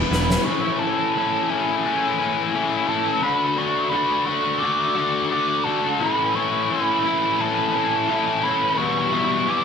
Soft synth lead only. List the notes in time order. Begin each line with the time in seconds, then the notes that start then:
0.11 B5
0.44 C#6
0.79 A5
1.50 G#5
2.89 A5
3.22 B5
3.58 C#6
3.89 B5
4.25 C#6
4.59 D6
5.30 D6
5.64 A5
5.98 B5
6.35 C#6
6.70 B5
7.41 A5
8.43 B5
8.78 C#6
9.50 D6